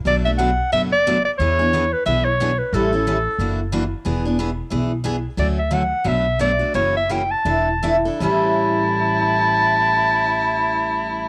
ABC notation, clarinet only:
X:1
M:4/4
L:1/8
Q:"Swing" 1/4=180
K:Amix
V:1 name="Clarinet"
d e f2 e d2 d | c3 B e c2 B | A6 z2 | z8 |
d e f2 e2 d2 | c e g a4 z | a8- | a8 |]